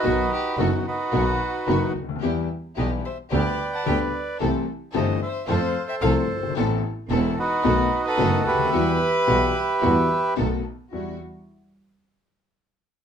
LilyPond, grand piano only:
\new Staff \with { instrumentName = "Grand piano" } { \clef bass \time 4/4 \key e \minor \tempo 4 = 110 <b,, b, dis fis b fis'>8 r8 <fis,, fis, dis fis b fis'>8 r8 <b,, b, dis fis b fis'>8 r8 <fis,, fis, dis fis b fis'>8 r32 cis,32 d,32 dis,32 | <e, e g b g'>8 r8 <b,, b, e g b g'>8 r8 <d, d g b g'>8 r8 <d, d g b g'>8 r8 | <c, c e a c' g'>8 r8 <g,, g, e a c' g'>8 r8 <f, f a c' a'>8 r8 <c, c f a c' a'>8 r32 fis,,32 g,,32 gis,,32 | <a,, a, e b c' a'>8 r8 <e,, e, e b c' a'>8 r8 <b,, b, dis a b fis'>8 r8 <fis,, fis, dis a b fis'>8 r32 cis,32 d,32 dis,32 |
<e, e g b fis'>8 r8 <b,, b, e g b fis'>8 r8 <e, e g b fis'>8 r8 <b,, b, dis a b fis'>8 r8 | <e, g e' fis'>8 r2. r8 | }